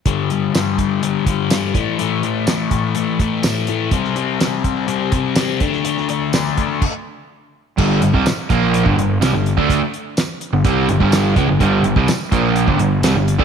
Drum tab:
CC |----------------|----------------|----------------|--------x-------|
HH |x-x-x-x-x-x-x-x-|x-x-x-x-x-x-x-x-|x-x-x-x-x-x-x-x-|x-x-x-x---------|
TB |----x-------x---|----x-------x---|----x-------x---|----x-----------|
SD |----o-------o---|----o-------o---|-o--o-------o--o|-o--o-----------|
BD |o-----o---o---o-|------o---o-----|o-----o---o---o-|------o-o-------|

CC |x---------------|----------------|----------------|
HH |--x-x-x-x-x-x-x-|x-x-x-x-x-x-x-x-|x-x-x-x-x-x-x-x-|
TB |----x-------x---|----x-------x---|----x-------x---|
SD |----o-------o---|----o-------o---|----o-------o---|
BD |o--o--o--o-----o|o-------o--o--o-|o--o--o--o-----o|